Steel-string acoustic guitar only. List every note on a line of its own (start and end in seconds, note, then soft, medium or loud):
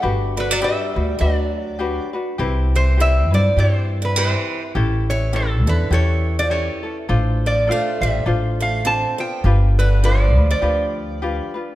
0.37 0.51 D3 medium
0.51 0.61 F#3 medium
0.62 1.17 G3 medium
1.19 2.08 F#3 medium
2.76 2.98 E3 medium
3.00 3.30 G3 medium
3.34 3.56 F3 medium
3.59 4.00 E3 medium
4.02 4.16 D3 medium
4.16 4.27 D#3 medium
4.27 4.62 E3 medium
5.11 5.33 E3 medium
5.33 5.64 C#3 medium
5.67 5.90 D3 medium
5.92 6.35 E3 medium
6.39 6.51 F3 medium
6.51 6.97 E3 medium
7.46 7.68 F3 medium
7.72 8.01 A3 medium
8.03 8.26 G3 medium
8.60 8.84 A3 medium
8.85 9.16 C4 medium
9.18 9.42 B3 medium
9.80 10.03 D3 medium
10.04 10.46 F3 medium
10.51 11.51 F3 medium